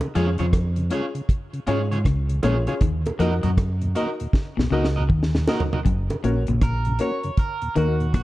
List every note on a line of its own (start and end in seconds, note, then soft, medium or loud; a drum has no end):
0.01 0.08 C#3 medium
0.01 closed hi-hat soft
0.01 high bongo medium
0.15 0.39 F2 loud
0.15 0.30 F3 medium
0.15 0.27 G#3 medium
0.15 0.32 C#4 medium
0.15 0.27 C#4 medium
0.15 0.28 F4 loud
0.15 0.32 F4 medium
0.15 0.27 F4 medium
0.15 0.28 G#4 medium
0.15 0.32 G#4 medium
0.15 0.29 C#5 loud
0.15 0.32 C#5 loud
0.15 closed hi-hat medium
0.38 0.89 F2 loud
0.38 0.46 C#3 medium
0.38 0.62 F3 medium
0.38 0.45 F4 medium
0.38 0.45 G#4 medium
0.38 0.45 C#5 medium
0.38 closed hi-hat medium
0.53 kick loud
0.53 cross-stick loud
0.53 closed hi-hat medium
0.53 high bongo medium
0.76 0.84 C#3 medium
0.76 closed hi-hat soft
0.90 1.02 G#3 medium
0.90 1.02 C#4 medium
0.90 1.08 C#4 medium
0.90 1.08 F4 medium
0.90 1.03 F4 medium
0.90 1.04 F4 medium
0.90 1.08 G#4 medium
0.90 1.05 G#4 medium
0.90 1.08 C#5 medium
0.90 1.05 C#5 medium
0.90 closed hi-hat medium
1.15 1.22 C#3 medium
1.15 closed hi-hat soft
1.29 kick loud
1.29 closed hi-hat medium
1.53 1.60 C#3 medium
1.53 closed hi-hat soft
1.67 2.04 G#2 loud
1.67 1.79 G#3 medium
1.67 1.90 G#3 medium
1.67 1.84 C#4 medium
1.67 1.79 C#4 medium
1.67 1.80 F4 medium
1.67 1.84 F4 medium
1.67 1.79 F4 medium
1.67 1.80 G#4 medium
1.67 1.84 G#4 medium
1.67 1.84 C#5 loud
1.67 1.81 C#5 medium
1.67 closed hi-hat medium
1.91 1.98 C#3 medium
1.91 1.98 F4 medium
1.91 1.98 G#4 medium
1.91 1.97 C#5 medium
1.91 closed hi-hat soft
2.05 2.42 C#2 loud
2.05 2.28 C#3 medium
2.05 kick loud
2.05 cross-stick loud
2.05 closed hi-hat medium
2.29 2.36 C#3 medium
2.29 closed hi-hat medium
2.43 2.67 A#1 medium
2.43 2.58 A#2 medium
2.43 2.55 G#3 medium
2.43 2.60 C#4 medium
2.43 2.55 C#4 medium
2.43 2.56 F4 medium
2.43 2.60 F4 medium
2.43 2.55 F4 medium
2.43 2.56 G#4 medium
2.43 2.60 G#4 medium
2.43 2.57 C#5 medium
2.43 2.61 C#5 loud
2.43 closed hi-hat medium
2.43 high bongo medium
2.43 low bongo medium
2.67 2.74 C#3 soft
2.67 2.77 C#4 medium
2.67 2.77 F4 medium
2.67 2.74 F4 soft
2.67 2.74 G#4 medium
2.67 2.77 G#4 medium
2.67 2.73 C#5 medium
2.67 2.78 C#5 medium
2.67 closed hi-hat soft
2.81 3.05 D#2 loud
2.81 2.96 D#3 medium
2.81 kick loud
2.81 closed hi-hat medium
3.06 3.12 D#2 medium
3.06 3.12 A#2 medium
3.06 closed hi-hat soft
3.06 high bongo medium
3.19 3.43 F2 medium
3.19 3.34 F3 medium
3.19 3.31 A#3 medium
3.19 3.36 D#4 medium
3.19 3.31 D#4 medium
3.19 3.32 F#4 medium
3.19 3.36 F#4 medium
3.19 3.31 F#4 medium
3.19 3.36 A#4 medium
3.19 3.33 A#4 medium
3.19 3.37 D#5 loud
3.19 3.33 D#5 medium
3.19 closed hi-hat medium
3.43 3.50 D#2 medium
3.43 3.94 F#2 medium
3.43 3.50 A#2 medium
3.43 3.66 F#3 medium
3.43 3.50 F#4 soft
3.43 3.50 A#4 medium
3.43 3.49 D#5 medium
3.43 closed hi-hat medium
3.57 kick loud
3.57 cross-stick loud
3.57 closed hi-hat medium
3.57 high bongo medium
3.81 3.89 D#2 medium
3.81 3.88 A#2 medium
3.81 closed hi-hat medium
3.95 4.07 A#3 medium
3.95 4.12 D#4 medium
3.95 4.07 D#4 medium
3.95 4.08 F#4 medium
3.95 4.12 F#4 medium
3.95 4.08 F#4 medium
3.95 4.13 A#4 medium
3.95 4.09 A#4 medium
3.95 4.13 D#5 loud
3.95 4.09 D#5 medium
3.95 closed hi-hat medium
4.20 4.27 D#2 medium
4.20 4.27 A#2 medium
4.20 closed hi-hat medium
4.33 kick loud
4.33 snare medium
4.57 4.71 B1 medium
4.57 4.65 D#2 medium
4.57 4.65 A#2 medium
4.57 4.66 B2 medium
4.57 snare medium
4.70 5.08 C#2 loud
4.70 4.94 C#3 medium
4.70 4.84 A#3 medium
4.70 4.88 D#4 loud
4.70 4.84 D#4 medium
4.70 4.89 F#4 medium
4.70 4.85 F#4 medium
4.70 4.84 F#4 medium
4.70 4.89 A#4 medium
4.70 4.85 A#4 medium
4.70 4.89 D#5 loud
4.70 4.86 D#5 medium
4.84 snare medium
4.96 5.03 D#2 medium
4.96 5.03 A#2 medium
4.96 5.03 F#4 medium
4.96 5.02 A#4 medium
4.96 5.02 D#5 medium
5.09 5.46 D#2 medium
5.09 5.32 D#3 medium
5.09 kick loud
5.09 mid tom medium
5.23 snare medium
5.34 5.41 D#2 medium
5.34 5.41 A#2 medium
5.34 snare medium
5.47 5.60 A#3 medium
5.47 5.64 D#4 medium
5.47 5.60 D#4 medium
5.47 5.65 F#4 medium
5.47 5.61 F#4 medium
5.47 5.60 F#4 medium
5.47 5.65 A#4 medium
5.47 5.61 A#4 loud
5.47 5.65 D#5 loud
5.47 5.61 D#5 loud
5.47 snare medium
5.47 high bongo medium
5.47 low bongo medium
5.60 floor tom loud
5.72 5.79 D#4 medium
5.72 5.79 F#4 medium
5.72 5.79 F#4 soft
5.72 5.78 A#4 soft
5.72 5.79 A#4 medium
5.72 5.78 D#5 soft
5.72 5.78 D#5 medium
5.72 floor tom medium
5.85 6.09 F#1 loud
5.85 6.00 F#2 medium
5.85 kick loud
5.85 closed hi-hat medium
6.10 6.17 F#2 medium
6.10 6.17 C#3 medium
6.10 closed hi-hat soft
6.10 high bongo medium
6.23 6.47 A#1 medium
6.23 6.38 A#2 medium
6.23 6.36 A#3 medium
6.23 6.40 C#4 medium
6.23 6.36 C#4 medium
6.23 6.41 F#4 medium
6.23 6.36 F#4 medium
6.23 6.41 A#4 medium
6.23 6.41 C#5 medium
6.23 closed hi-hat medium
6.47 6.98 A#1 medium
6.47 6.56 F#2 medium
6.47 6.71 A#2 medium
6.47 6.55 C#3 medium
6.47 closed hi-hat medium
6.61 7.01 A#4 medium
6.61 kick loud
6.61 cross-stick loud
6.61 closed hi-hat medium
6.85 6.93 F#2 medium
6.85 6.93 C#3 medium
6.85 closed hi-hat soft
6.99 7.12 A#3 medium
6.99 7.17 C#4 medium
6.99 7.12 C#4 medium
6.99 7.17 F#4 medium
6.99 7.12 F#4 medium
6.99 7.17 A#4 medium
6.99 7.17 C#5 medium
6.99 7.36 C#5 loud
6.99 closed hi-hat medium
7.23 7.31 F#2 medium
7.23 7.31 C#3 medium
7.23 closed hi-hat soft
7.37 7.74 A#4 loud
7.37 kick loud
7.37 closed hi-hat medium
7.62 7.69 D#2 medium
7.62 7.69 A#2 medium
7.62 closed hi-hat soft
7.75 8.13 D#2 loud
7.75 7.98 D#3 medium
7.75 7.93 A#3 medium
7.75 7.88 A#3 medium
7.75 7.88 D#4 medium
7.75 7.93 D#4 medium
7.75 7.93 F#4 medium
7.75 7.88 F#4 medium
7.75 8.13 F#4 medium
7.75 7.93 A#4 loud
7.75 closed hi-hat medium
8.00 8.07 D#2 medium
8.00 8.07 A#2 medium
8.00 closed hi-hat soft
8.14 8.23 A#1 medium
8.14 8.23 A#2 medium
8.14 8.23 F#4 medium
8.14 kick loud
8.14 cross-stick loud
8.14 closed hi-hat medium